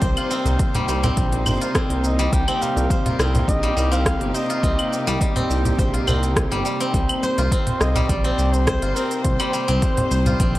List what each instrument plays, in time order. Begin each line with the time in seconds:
Already playing: string section C3 A#3 D#4 C5, guzheng G3 C4 F4, muted trumpet C5
0.02 analog synth bass C2, guzheng C5, kick, open hi-hat, shaker
0.17 guzheng F4, open hi-hat, claves
0.31 guzheng C4, shaker
0.45 analog synth bass C2, cajon slap, open hi-hat, shaker
0.59 kick, open hi-hat, shaker
0.75 guzheng G3, cajon bass, open hi-hat
0.88 analog synth bass C2, guzheng G3, shaker
1.03 guzheng C4, cajon bass, open hi-hat, shaker
1.17 analog synth bass A#1, kick, open hi-hat, shaker
1.32 cajon slap, open hi-hat
1.46 analog synth bass G1, guzheng C5, cajon bass, claves, shaker
1.61 guzheng F4, open hi-hat, shaker
1.75 guzheng C4, kick, cross-stick, open hi-hat, shaker
1.90 analog synth bass C2, open hi-hat
2.04 muted trumpet D#5, shaker
2.19 guzheng G3, open hi-hat, shaker
2.32 analog synth bass C2, guzheng G3, string section G4, muted trumpet G5, kick, open hi-hat, shaker
2.48 guzheng C4, open hi-hat, claves
2.62 muted trumpet F5, cajon slap, shaker
2.76 analog synth bass C2, cajon slap, open hi-hat, shaker
2.90 guzheng C5, kick, open hi-hat, shaker
3.06 guzheng F4, cajon bass, open hi-hat
3.19 analog synth bass C2, guzheng C4, cross-stick, shaker
3.35 cajon bass, open hi-hat, shaker
3.48 analog synth bass A#1, muted trumpet D#5, kick, open hi-hat, shaker
3.63 guzheng G3, open hi-hat
3.77 analog synth bass C2, guzheng G3, shaker
3.92 guzheng C4, muted trumpet F5, open hi-hat, shaker
4.06 kick, cross-stick, open hi-hat, shaker
4.21 analog synth bass G1, open hi-hat
4.34 guzheng C5, muted trumpet D#5, shaker
4.50 guzheng F4, open hi-hat, shaker
4.63 analog synth bass C2, guzheng C4, kick, open hi-hat, shaker
4.79 open hi-hat, claves
4.93 shaker
5.07 analog synth bass C2, guzheng G3, cajon slap, open hi-hat, shaker
5.21 guzheng G3, kick, open hi-hat, shaker
5.36 guzheng C4, cajon bass, open hi-hat
5.50 analog synth bass C2, shaker
5.65 cajon bass, open hi-hat, shaker
5.78 analog synth bass A#1, guzheng C5, kick, open hi-hat, shaker
5.94 guzheng F4, cajon slap, open hi-hat
6.07 analog synth bass C2, guzheng C4, cajon bass, claves, shaker
6.23 open hi-hat, shaker
6.36 kick, cross-stick, open hi-hat, shaker
6.51 analog synth bass G1, guzheng G3, open hi-hat
6.65 guzheng G3, shaker
6.80 guzheng C4, open hi-hat, shaker
6.94 analog synth bass C2, string section C5, kick, open hi-hat, shaker
7.09 open hi-hat, claves
7.23 muted trumpet C5, guzheng C5, cajon slap, shaker
7.38 analog synth bass C2, guzheng F4, cajon slap, open hi-hat, shaker
7.52 guzheng C4, kick, open hi-hat, shaker
7.67 cajon bass, open hi-hat
7.81 analog synth bass C2, muted trumpet D#5, cross-stick, shaker
7.96 guzheng G3, cajon bass, open hi-hat, shaker
8.03 muted trumpet D#5
8.09 analog synth bass A#1, guzheng G3, muted trumpet D5, kick, open hi-hat, shaker
8.24 guzheng C4, open hi-hat
8.38 analog synth bass C2, shaker
8.53 muted trumpet C5, open hi-hat, shaker
8.67 guzheng C5, kick, cross-stick, open hi-hat, shaker
8.82 analog synth bass G1, guzheng F4, open hi-hat
8.95 guzheng C4, muted trumpet A#4, shaker
9.11 open hi-hat, shaker
9.24 analog synth bass C2, muted trumpet C5, kick, open hi-hat, shaker
9.40 guzheng G3, open hi-hat, claves
9.53 guzheng G3, shaker
9.68 analog synth bass C2, guzheng C4, cajon slap, open hi-hat, shaker
9.82 kick, open hi-hat, shaker
9.97 cajon bass, open hi-hat
10.11 analog synth bass C2, guzheng C5, shaker
10.26 guzheng F4, cajon bass, open hi-hat, shaker
10.40 analog synth bass A#1, guzheng C4, kick, open hi-hat, shaker
10.55 cajon slap, open hi-hat